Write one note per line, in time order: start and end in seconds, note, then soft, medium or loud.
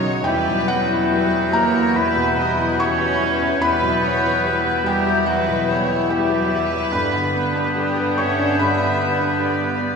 0.00 0.22 B1 medium
0.00 0.29 F#2 medium
0.00 0.26 F#3 medium
0.00 0.29 C#4 medium
0.00 1.07 C#4 medium
0.00 0.06 D#4 medium
0.00 0.22 D#4 medium
0.00 0.29 F#4 medium
0.00 0.25 C#5 loud
0.00 0.29 C#5 medium
0.00 0.28 D#5 loud
0.00 0.28 E5 loud
0.00 0.21 F#5 loud
0.04 0.26 F#3 medium
0.04 0.26 D#4 medium
0.24 3.61 E2 medium
0.24 1.93 E2 medium
0.24 0.46 E3 medium
0.24 3.59 E3 medium
0.24 0.68 G3 medium
0.24 3.59 B3 medium
0.24 3.59 E4 medium
0.24 0.69 G4 medium
0.24 1.11 B4 loud
0.24 0.65 G5 loud
0.24 3.59 G6 medium
0.47 0.82 B2 medium
0.47 0.69 F#3 medium
0.68 1.54 F#3 loud
0.68 0.90 G3 medium
0.68 1.03 B3 medium
0.68 1.55 F#4 medium
0.68 1.50 F#5 loud
0.91 1.13 B3 medium
0.91 1.25 E4 medium
1.11 3.63 B2 medium
1.11 1.33 G3 medium
1.11 1.46 F#4 medium
1.11 1.53 B4 medium
1.34 1.55 F#3 medium
1.34 1.67 B4 medium
1.53 1.75 E3 medium
1.53 1.96 A#3 loud
1.53 1.88 G4 medium
1.53 1.99 A#4 loud
1.53 1.96 C#5 medium
1.53 1.93 A#5 loud
1.74 1.97 F#3 medium
1.74 2.09 E4 medium
1.95 3.59 E2 medium
1.95 2.16 G3 medium
1.95 2.80 B3 medium
1.95 2.38 B4 loud
1.95 2.82 B4 medium
1.95 2.76 B5 medium
2.16 2.50 B2 medium
2.16 2.38 B3 medium
2.37 2.59 G3 medium
2.37 2.71 B3 medium
2.37 2.80 D#5 medium
2.58 2.79 F#3 medium
2.58 2.92 E4 medium
2.79 3.01 E3 medium
2.79 3.63 C#4 loud
2.79 3.13 G4 medium
2.79 3.63 C#5 loud
2.79 3.22 C#5 medium
2.79 3.59 C#6 loud
3.00 3.21 F#3 medium
3.00 3.34 B4 medium
3.20 3.42 G3 medium
3.20 3.55 G4 medium
3.20 3.61 B4 medium
3.40 3.62 B3 medium
3.40 3.75 E4 medium
3.61 5.23 E2 medium
3.61 6.89 E2 medium
3.61 4.04 E3 medium
3.61 6.78 E3 medium
3.61 3.81 G3 medium
3.61 6.78 B3 medium
3.61 6.62 B3 medium
3.61 4.87 B3 loud
3.61 6.89 E4 medium
3.61 4.03 B4 loud
3.61 4.90 B4 loud
3.61 4.82 B5 loud
3.61 6.62 G6 loud
3.81 4.16 B2 medium
3.81 4.04 F#3 medium
4.02 4.25 E3 medium
4.02 4.36 B3 medium
4.06 4.47 C#5 loud
4.24 4.46 F#3 medium
4.24 4.57 E4 medium
4.44 4.66 G3 medium
4.44 4.78 G4 medium
4.44 4.87 B4 medium
4.64 4.86 B3 medium
4.64 4.98 B4 medium
4.85 5.07 G3 medium
4.85 5.27 G3 loud
4.85 5.19 G4 medium
4.85 5.30 G4 loud
4.85 5.28 A#4 medium
4.85 5.25 G5 loud
5.05 5.27 F#3 medium
5.05 5.40 E4 medium
5.26 6.89 E2 medium
5.26 5.47 E3 medium
5.26 5.69 F#3 medium
5.26 5.70 F#4 medium
5.26 5.69 B4 loud
5.26 5.65 F#5 loud
5.48 5.81 B2 medium
5.48 5.69 F#3 medium
5.68 5.90 G3 medium
5.68 6.01 B3 medium
5.68 6.11 C#5 medium
5.89 6.10 B3 medium
5.89 6.22 E4 medium
6.09 6.89 G3 loud
6.09 6.31 G3 medium
6.09 6.43 G4 medium
6.09 6.94 G4 loud
6.09 7.77 B4 loud
6.09 6.89 G5 medium
6.29 6.51 F#3 medium
6.29 6.63 B4 medium
6.51 6.72 E3 medium
6.51 6.84 G4 medium
6.71 6.93 F#3 medium
6.71 6.93 E4 medium
6.91 8.54 G2 medium
6.91 9.96 G2 medium
6.91 7.12 D3 medium
6.91 9.96 D3 medium
6.91 7.12 G3 medium
6.91 9.96 B3 medium
6.91 8.18 B3 loud
6.91 9.96 B3 medium
6.91 9.96 D4 medium
6.91 8.20 B4 loud
6.91 8.14 B5 loud
6.91 9.96 G6 medium
7.13 7.48 D3 medium
7.13 7.35 G3 medium
7.35 7.68 B3 medium
7.35 7.56 B3 medium
7.56 7.77 G3 medium
7.56 7.89 D4 medium
7.76 7.97 D3 medium
7.76 8.09 G4 medium
7.76 8.17 G4 medium
7.98 8.18 G3 medium
7.98 8.30 B4 medium
8.18 8.38 B3 medium
8.18 8.59 C#4 loud
8.18 8.51 G4 medium
8.18 8.60 C#5 loud
8.18 9.43 E5 medium
8.18 8.56 C#6 loud
8.38 8.59 G3 medium
8.38 8.72 D4 medium
8.59 9.96 G2 medium
8.59 8.79 D3 medium
8.59 9.96 B3 loud
8.59 9.96 B4 loud
8.59 9.96 B5 loud
8.80 9.13 D3 medium
8.80 9.01 G3 medium
9.01 9.21 B3 medium
9.01 9.34 B3 medium
9.20 9.42 G3 medium
9.20 9.54 D4 medium
9.41 9.62 D3 medium
9.41 9.75 G4 medium
9.41 9.96 D5 medium
9.63 9.83 G3 medium
9.63 9.96 B4 medium
9.82 9.96 B3 medium
9.82 9.96 G4 medium